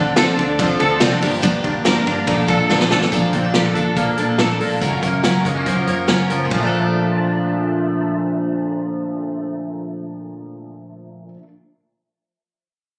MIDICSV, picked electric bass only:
0, 0, Header, 1, 2, 480
1, 0, Start_track
1, 0, Key_signature, -2, "major"
1, 0, Tempo, 423131
1, 1628, Time_signature, 4, 2, 24, 8
1, 14728, End_track
2, 0, Start_track
2, 0, Title_t, "Picked electric bass"
2, 0, Program_c, 0, 34
2, 0, Note_on_c, 0, 38, 106
2, 247, Note_off_c, 0, 38, 0
2, 427, Note_on_c, 0, 38, 99
2, 724, Note_off_c, 0, 38, 0
2, 914, Note_on_c, 0, 38, 102
2, 1108, Note_off_c, 0, 38, 0
2, 1146, Note_on_c, 0, 36, 92
2, 1343, Note_off_c, 0, 36, 0
2, 1387, Note_on_c, 0, 31, 108
2, 1780, Note_off_c, 0, 31, 0
2, 1864, Note_on_c, 0, 31, 105
2, 2159, Note_off_c, 0, 31, 0
2, 2346, Note_on_c, 0, 31, 98
2, 2542, Note_off_c, 0, 31, 0
2, 2575, Note_on_c, 0, 34, 91
2, 2775, Note_off_c, 0, 34, 0
2, 2820, Note_on_c, 0, 34, 94
2, 3018, Note_off_c, 0, 34, 0
2, 3064, Note_on_c, 0, 33, 106
2, 3260, Note_off_c, 0, 33, 0
2, 3300, Note_on_c, 0, 33, 89
2, 3497, Note_off_c, 0, 33, 0
2, 3541, Note_on_c, 0, 34, 86
2, 3738, Note_off_c, 0, 34, 0
2, 3777, Note_on_c, 0, 34, 81
2, 3976, Note_off_c, 0, 34, 0
2, 4025, Note_on_c, 0, 34, 81
2, 4220, Note_off_c, 0, 34, 0
2, 4261, Note_on_c, 0, 34, 86
2, 4458, Note_off_c, 0, 34, 0
2, 4499, Note_on_c, 0, 34, 93
2, 4697, Note_off_c, 0, 34, 0
2, 4739, Note_on_c, 0, 46, 75
2, 4937, Note_off_c, 0, 46, 0
2, 4981, Note_on_c, 0, 34, 91
2, 5178, Note_off_c, 0, 34, 0
2, 5226, Note_on_c, 0, 34, 85
2, 5421, Note_off_c, 0, 34, 0
2, 5462, Note_on_c, 0, 30, 83
2, 5659, Note_off_c, 0, 30, 0
2, 5704, Note_on_c, 0, 30, 68
2, 5901, Note_off_c, 0, 30, 0
2, 5946, Note_on_c, 0, 30, 80
2, 6142, Note_off_c, 0, 30, 0
2, 6184, Note_on_c, 0, 30, 81
2, 6381, Note_off_c, 0, 30, 0
2, 6426, Note_on_c, 0, 30, 85
2, 6623, Note_off_c, 0, 30, 0
2, 6663, Note_on_c, 0, 42, 72
2, 6861, Note_off_c, 0, 42, 0
2, 6903, Note_on_c, 0, 30, 82
2, 7101, Note_off_c, 0, 30, 0
2, 7148, Note_on_c, 0, 30, 67
2, 7344, Note_off_c, 0, 30, 0
2, 7389, Note_on_c, 0, 34, 73
2, 12826, Note_off_c, 0, 34, 0
2, 14728, End_track
0, 0, End_of_file